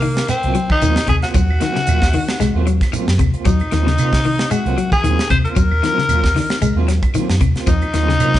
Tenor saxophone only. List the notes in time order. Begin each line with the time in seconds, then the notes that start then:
Already playing: A#3
0.29 C4
0.72 D#4
1.09 G#4
1.23 F#4
3.46 D#4
4.51 F#4
4.93 G#4
5.31 C5
5.45 A#4
7.68 D#4